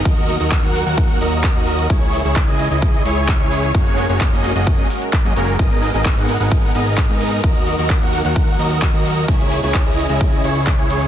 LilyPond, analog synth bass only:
\new Staff \with { instrumentName = "Analog synth bass" } { \clef bass \time 4/4 \key dis \phrygian \tempo 4 = 130 dis,8. dis,8 dis,8 dis,8. dis,8. dis,8. | r8. cis,8 cis,8 cis,8. cis,8. cis,8. | fis,,8. fis,,8 fis,,8 fis,,8. r8. fis,16 fis,,8 | r8. gis,,8 gis,,8 gis,,8. gis,,8. gis,8. |
dis,8. dis,8 dis,8 dis,8. dis,8. dis,8. | cis,8. cis,8 cis,8 cis,8. cis,8. cis,8. | }